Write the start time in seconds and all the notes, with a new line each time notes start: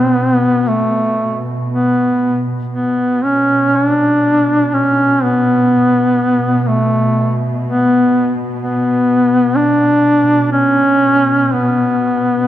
Already playing: B2 B3
0.68 A3
1.70 B3
2.71 B2 B3
3.24 C#4
3.76 D4
4.74 C#4
5.23 B3
6.62 B3
6.68 A3
7.67 B3
8.62 B3
9.56 D4
10.52 C#4
11.53 B3